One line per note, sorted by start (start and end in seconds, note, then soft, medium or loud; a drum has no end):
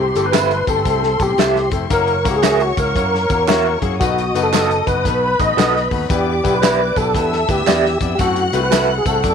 0.00 0.11 C2 loud
0.00 0.64 C3 medium
0.00 1.86 C4 medium
0.00 0.27 G4 medium
0.00 1.86 C6 medium
0.15 0.61 G1 medium
0.15 0.27 A3 medium
0.15 0.27 C4 medium
0.15 0.27 E4 medium
0.15 0.27 G4 medium
0.15 0.27 A4 loud
0.15 closed hi-hat medium
0.15 tambourine medium
0.26 0.70 B4 loud
0.32 0.55 A3 medium
0.32 0.55 C4 medium
0.32 0.55 E4 medium
0.32 0.50 G4 medium
0.32 0.55 G4 medium
0.32 0.51 A4 medium
0.32 0.55 A4 medium
0.32 0.51 E5 medium
0.32 snare loud
0.32 clap loud
0.32 closed hi-hat loud
0.32 tambourine loud
0.51 closed hi-hat medium
0.67 0.83 G1 medium
0.67 0.79 A3 medium
0.67 0.79 C4 medium
0.67 0.79 E4 medium
0.67 0.79 G4 medium
0.67 0.79 A4 medium
0.67 1.23 A4 loud
0.67 kick loud
0.67 closed hi-hat medium
0.67 tambourine medium
0.85 1.15 C2 loud
0.85 1.07 A3 medium
0.85 1.07 C4 medium
0.85 1.07 E4 medium
0.85 1.07 G4 medium
0.85 1.07 A4 medium
0.85 kick medium
0.85 closed hi-hat medium
0.85 tambourine soft
1.03 snare soft
1.20 1.36 B1 loud
1.20 1.32 A3 medium
1.20 1.32 C4 medium
1.20 1.32 E4 medium
1.20 1.32 G4 medium
1.20 1.70 G4 medium
1.20 1.32 A4 medium
1.20 kick medium
1.20 closed hi-hat medium
1.20 tambourine medium
1.38 1.68 C2 medium
1.38 1.60 A3 loud
1.38 1.60 C4 medium
1.38 1.60 E4 medium
1.38 1.56 G4 medium
1.38 1.60 G4 medium
1.38 1.60 A4 loud
1.38 1.56 A4 medium
1.38 1.56 E5 medium
1.38 snare loud
1.38 clap medium
1.38 closed hi-hat medium
1.38 tambourine medium
1.56 snare soft
1.71 1.88 F1 medium
1.71 1.84 A3 medium
1.71 1.84 C4 medium
1.71 1.84 E4 medium
1.71 1.84 G4 medium
1.71 1.84 A4 medium
1.71 kick medium
1.71 closed hi-hat medium
1.71 tambourine soft
1.90 2.27 F#1 loud
1.90 2.12 A#3 loud
1.90 2.12 C#4 medium
1.90 2.12 E4 medium
1.90 2.12 F#4 medium
1.90 2.12 A#4 loud
1.90 2.28 A#4 loud
1.90 3.96 C#5 medium
1.90 3.96 C#6 medium
1.90 kick loud
1.90 closed hi-hat medium
1.90 tambourine medium
2.08 closed hi-hat medium
2.24 2.71 C#2 medium
2.24 2.36 A#3 loud
2.24 2.36 C#4 medium
2.24 2.36 E4 medium
2.24 2.36 F#4 medium
2.24 2.36 A#4 loud
2.24 kick loud
2.24 closed hi-hat medium
2.24 tambourine medium
2.31 2.35 G4 medium
2.36 2.62 G#4 medium
2.42 2.64 A#3 medium
2.42 2.64 C#4 medium
2.42 2.64 E4 medium
2.42 2.60 F#4 medium
2.42 2.64 F#4 medium
2.42 2.64 G#4 medium
2.42 2.61 A#4 loud
2.42 2.61 E5 medium
2.42 snare loud
2.42 clap loud
2.42 closed hi-hat loud
2.42 tambourine loud
2.60 2.79 F#4 medium
2.60 closed hi-hat medium
2.77 2.93 C#2 medium
2.77 2.89 A#3 medium
2.77 2.89 C#4 medium
2.77 2.89 E4 medium
2.77 2.89 F#4 medium
2.77 2.89 A#4 medium
2.77 3.79 A#4 medium
2.77 kick loud
2.77 closed hi-hat medium
2.77 tambourine medium
2.95 3.25 F#2 loud
2.95 3.17 A#3 medium
2.95 3.17 C#4 medium
2.95 3.17 E4 medium
2.95 3.17 F#4 medium
2.95 3.17 A#4 medium
2.95 kick medium
2.95 closed hi-hat medium
3.15 snare soft
3.30 3.75 E2 medium
3.30 3.41 A#3 medium
3.30 3.41 C#4 medium
3.30 3.41 E4 medium
3.30 3.41 F#4 medium
3.30 3.41 A#4 medium
3.30 kick medium
3.30 closed hi-hat medium
3.30 tambourine medium
3.48 3.69 A#3 loud
3.48 3.69 C#4 loud
3.48 3.69 E4 loud
3.48 3.65 F#4 medium
3.48 3.69 F#4 loud
3.48 3.66 A#4 medium
3.48 3.70 C#5 loud
3.48 3.66 E5 medium
3.48 snare loud
3.48 clap medium
3.48 closed hi-hat medium
3.48 tambourine medium
3.82 3.98 F#2 loud
3.82 3.93 A#3 medium
3.82 3.94 C#4 medium
3.82 3.94 E4 medium
3.82 3.94 F#4 medium
3.82 3.94 G#4 loud
3.82 kick medium
3.82 closed hi-hat medium
4.00 4.30 B1 loud
4.00 4.83 B2 medium
4.00 4.22 B3 medium
4.00 4.22 D#4 medium
4.00 4.40 F#4 medium
4.00 4.22 F#4 medium
4.00 4.22 A4 medium
4.00 4.22 B4 loud
4.00 5.03 D#5 medium
4.00 5.03 D#6 medium
4.00 kick loud
4.00 closed hi-hat loud
4.00 tambourine medium
4.18 closed hi-hat medium
4.34 4.80 F#1 loud
4.34 4.46 B3 loud
4.34 4.46 D#4 medium
4.34 4.46 F#4 medium
4.34 4.46 A4 medium
4.34 4.46 B4 loud
4.34 closed hi-hat medium
4.34 tambourine medium
4.43 4.88 A4 loud
4.53 4.74 B3 medium
4.53 4.74 D#4 medium
4.53 4.70 F#4 medium
4.53 4.74 F#4 medium
4.53 4.74 A4 medium
4.53 4.71 A4 medium
4.53 4.74 B4 medium
4.53 4.71 D#5 medium
4.53 snare loud
4.53 clap loud
4.53 closed hi-hat loud
4.53 tambourine loud
4.71 closed hi-hat medium
4.87 5.06 F#1 medium
4.87 4.98 B3 medium
4.87 4.98 D#4 medium
4.87 4.98 F#4 medium
4.87 4.98 A4 medium
4.87 5.41 B4 medium
4.87 4.98 B4 medium
4.87 kick loud
4.87 closed hi-hat medium
4.87 tambourine medium
5.04 5.35 B1 medium
5.04 5.26 B3 medium
5.04 5.26 D#4 medium
5.04 5.27 F#4 medium
5.04 5.27 A4 medium
5.04 6.07 B4 medium
5.04 5.27 B4 medium
5.04 6.08 B5 medium
5.04 kick medium
5.04 closed hi-hat medium
5.04 tambourine soft
5.39 5.55 A1 medium
5.39 5.51 B3 medium
5.39 5.51 D#4 medium
5.39 5.51 F#4 medium
5.39 5.51 A4 medium
5.39 5.51 B4 medium
5.39 5.88 D#5 loud
5.39 kick medium
5.39 closed hi-hat medium
5.39 tambourine medium
5.57 5.87 B1 medium
5.57 5.79 B3 medium
5.57 5.79 D#4 medium
5.57 5.75 F#4 medium
5.57 5.79 F#4 medium
5.57 5.75 A4 medium
5.57 5.79 A4 medium
5.57 5.79 B4 loud
5.57 5.75 D#5 medium
5.57 snare loud
5.57 clap medium
5.57 closed hi-hat medium
5.57 tambourine medium
5.76 snare soft
5.91 6.07 D#2 medium
5.91 6.03 B3 medium
5.91 6.03 D#4 medium
5.91 6.03 F#4 medium
5.91 6.03 A4 medium
5.91 6.03 B4 medium
5.91 kick medium
5.91 open hi-hat soft
6.09 6.39 E2 medium
6.09 6.92 E3 medium
6.09 6.31 B3 medium
6.09 6.31 D4 medium
6.09 6.31 E4 medium
6.09 6.31 G4 medium
6.09 6.55 G4 medium
6.09 6.31 B4 loud
6.09 7.12 D5 medium
6.09 7.12 D6 medium
6.09 kick loud
6.09 closed hi-hat loud
6.09 tambourine medium
6.44 6.90 B1 medium
6.44 6.55 B3 loud
6.44 6.55 D4 medium
6.44 6.56 E4 medium
6.44 6.55 G4 medium
6.44 6.55 B4 loud
6.44 kick medium
6.44 closed hi-hat medium
6.44 tambourine medium
6.54 6.98 B4 loud
6.61 6.83 B3 medium
6.61 6.83 D4 medium
6.61 6.83 E4 medium
6.61 6.83 G4 medium
6.61 6.80 G4 medium
6.61 6.83 B4 medium
6.61 6.80 D5 medium
6.61 6.80 E5 medium
6.61 snare loud
6.61 clap loud
6.61 closed hi-hat medium
6.61 tambourine loud
6.96 7.16 B1 medium
6.96 7.08 B3 medium
6.96 7.08 D4 medium
6.96 7.08 E4 medium
6.96 7.08 G4 medium
6.96 7.51 A4 loud
6.96 7.08 B4 medium
6.96 kick loud
6.96 closed hi-hat medium
6.96 tambourine medium
7.14 7.44 E2 medium
7.14 7.36 B3 medium
7.14 7.36 D4 medium
7.14 7.36 E4 medium
7.14 7.36 G4 medium
7.14 7.36 B4 medium
7.14 8.17 E5 medium
7.14 8.17 E6 medium
7.14 kick medium
7.14 closed hi-hat medium
7.32 snare soft
7.48 7.65 D2 medium
7.48 7.60 B3 medium
7.48 7.60 D4 medium
7.48 7.60 E4 medium
7.48 7.60 G4 medium
7.48 7.98 G4 medium
7.48 7.60 B4 medium
7.48 kick medium
7.48 closed hi-hat medium
7.48 tambourine medium
7.66 7.96 E2 medium
7.66 7.89 B3 medium
7.66 7.88 D4 medium
7.66 7.89 E4 medium
7.66 7.84 G4 medium
7.66 7.89 G4 medium
7.66 7.89 B4 loud
7.66 7.84 D5 medium
7.66 7.85 E5 medium
7.66 snare loud
7.66 clap medium
7.66 closed hi-hat medium
7.66 tambourine medium
7.85 snare soft
8.00 8.17 F2 loud
8.00 8.13 B3 medium
8.00 8.13 D4 medium
8.00 8.13 E4 medium
8.00 8.13 G4 medium
8.00 8.13 D5 medium
8.00 kick medium
8.00 closed hi-hat medium
8.00 tambourine soft
8.15 8.20 G4 medium
8.15 kick loud
8.15 closed hi-hat medium
8.15 tambourine medium
8.19 8.49 F#2 loud
8.19 8.41 A3 loud
8.19 8.41 C4 medium
8.19 8.41 E4 medium
8.19 8.41 F#4 loud
8.19 8.60 F#4 medium
8.19 8.41 A4 loud
8.19 9.22 F#5 medium
8.19 9.22 F#6 medium
8.36 closed hi-hat medium
8.53 8.99 C2 loud
8.53 8.65 A3 loud
8.53 8.65 C4 medium
8.53 8.65 E4 medium
8.53 8.65 F#4 medium
8.53 8.65 B4 loud
8.53 closed hi-hat medium
8.53 tambourine medium
8.63 8.95 B4 loud
8.71 8.93 A3 medium
8.71 8.93 C4 medium
8.71 8.93 E4 medium
8.71 8.89 F#4 medium
8.71 8.93 F#4 medium
8.71 8.89 A4 medium
8.71 8.93 A4 medium
8.71 8.89 E5 medium
8.71 snare loud
8.71 clap loud
8.71 closed hi-hat loud
8.71 tambourine loud
8.98 9.06 G#4 medium
9.06 9.22 C2 loud
9.06 9.17 A3 medium
9.06 9.17 C4 medium
9.06 9.17 E4 medium
9.06 9.17 F#4 medium
9.06 9.35 A4 loud
9.06 9.18 C5 medium
9.06 kick loud
9.06 closed hi-hat medium
9.06 tambourine medium
9.23 9.35 F#2 medium
9.23 9.35 A3 medium
9.23 9.35 C4 medium
9.23 9.35 E4 medium
9.23 9.35 F#4 medium
9.23 9.35 A4 medium
9.23 9.35 D5 medium
9.23 9.35 D6 medium
9.23 kick medium
9.23 closed hi-hat medium
9.23 tambourine soft